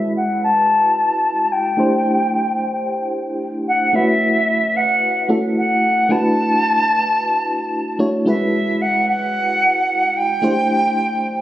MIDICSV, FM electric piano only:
0, 0, Header, 1, 2, 480
1, 0, Start_track
1, 0, Tempo, 540541
1, 1577, Time_signature, 4, 2, 24, 8
1, 10137, End_track
2, 0, Start_track
2, 0, Title_t, "FM electric piano"
2, 0, Program_c, 0, 5
2, 0, Control_c, 0, 64, 127
2, 0, Note_on_c, 0, 56, 61
2, 0, Note_on_c, 0, 61, 58
2, 0, Note_on_c, 0, 64, 56
2, 0, Note_on_c, 0, 66, 57
2, 0, Note_on_c, 0, 71, 68
2, 1537, Note_off_c, 0, 56, 0
2, 1540, Note_off_c, 0, 61, 0
2, 1543, Note_off_c, 0, 64, 0
2, 1546, Note_off_c, 0, 66, 0
2, 1549, Note_off_c, 0, 71, 0
2, 1569, Note_on_c, 0, 57, 62
2, 1575, Note_on_c, 0, 62, 57
2, 1582, Note_on_c, 0, 64, 59
2, 1588, Control_c, 0, 64, 0
2, 1588, Note_on_c, 0, 67, 59
2, 1594, Note_on_c, 0, 72, 71
2, 1768, Control_c, 0, 64, 127
2, 3458, Note_off_c, 0, 57, 0
2, 3460, Note_off_c, 0, 62, 0
2, 3464, Note_off_c, 0, 64, 0
2, 3467, Note_off_c, 0, 67, 0
2, 3470, Note_off_c, 0, 72, 0
2, 3490, Note_on_c, 0, 57, 66
2, 3496, Note_on_c, 0, 61, 58
2, 3502, Note_on_c, 0, 64, 56
2, 3508, Control_c, 0, 64, 0
2, 3508, Note_on_c, 0, 66, 57
2, 3514, Note_on_c, 0, 71, 66
2, 3657, Control_c, 0, 64, 127
2, 4669, Note_off_c, 0, 57, 0
2, 4672, Note_off_c, 0, 61, 0
2, 4676, Note_off_c, 0, 64, 0
2, 4678, Note_off_c, 0, 66, 0
2, 4682, Note_off_c, 0, 71, 0
2, 4695, Note_on_c, 0, 57, 49
2, 4698, Note_on_c, 0, 61, 45
2, 4700, Note_on_c, 0, 64, 45
2, 4704, Note_on_c, 0, 66, 46
2, 4707, Note_on_c, 0, 69, 55
2, 5398, Note_off_c, 0, 57, 0
2, 5408, Note_on_c, 0, 57, 64
2, 5410, Note_off_c, 0, 64, 0
2, 5415, Note_on_c, 0, 62, 58
2, 5417, Note_off_c, 0, 61, 0
2, 5417, Note_off_c, 0, 66, 0
2, 5421, Note_on_c, 0, 64, 59
2, 5422, Note_off_c, 0, 69, 0
2, 5427, Note_on_c, 0, 66, 57
2, 5430, Control_c, 0, 64, 0
2, 5433, Note_on_c, 0, 71, 70
2, 5568, Control_c, 0, 64, 127
2, 7059, Note_off_c, 0, 57, 0
2, 7062, Note_off_c, 0, 62, 0
2, 7065, Note_off_c, 0, 64, 0
2, 7069, Note_off_c, 0, 66, 0
2, 7072, Note_off_c, 0, 71, 0
2, 7094, Note_on_c, 0, 57, 57
2, 7097, Note_on_c, 0, 62, 53
2, 7101, Note_on_c, 0, 64, 53
2, 7104, Note_on_c, 0, 66, 51
2, 7106, Note_on_c, 0, 73, 62
2, 7330, Note_on_c, 0, 56, 63
2, 7332, Note_off_c, 0, 64, 0
2, 7335, Note_off_c, 0, 57, 0
2, 7336, Note_on_c, 0, 61, 57
2, 7337, Note_off_c, 0, 62, 0
2, 7337, Note_off_c, 0, 66, 0
2, 7342, Note_off_c, 0, 73, 0
2, 7342, Note_on_c, 0, 64, 59
2, 7348, Control_c, 0, 64, 0
2, 7348, Note_on_c, 0, 66, 60
2, 7354, Note_on_c, 0, 71, 69
2, 7504, Control_c, 0, 64, 127
2, 9218, Note_off_c, 0, 56, 0
2, 9221, Note_off_c, 0, 61, 0
2, 9224, Note_off_c, 0, 64, 0
2, 9227, Note_off_c, 0, 66, 0
2, 9230, Note_off_c, 0, 71, 0
2, 9249, Note_on_c, 0, 57, 63
2, 9256, Note_on_c, 0, 62, 59
2, 9261, Note_on_c, 0, 64, 60
2, 9267, Note_on_c, 0, 67, 60
2, 9268, Control_c, 0, 64, 0
2, 9273, Note_on_c, 0, 72, 71
2, 9412, Control_c, 0, 64, 127
2, 10137, Note_off_c, 0, 57, 0
2, 10137, Note_off_c, 0, 62, 0
2, 10137, Note_off_c, 0, 64, 0
2, 10137, Note_off_c, 0, 67, 0
2, 10137, Note_off_c, 0, 72, 0
2, 10137, End_track
0, 0, End_of_file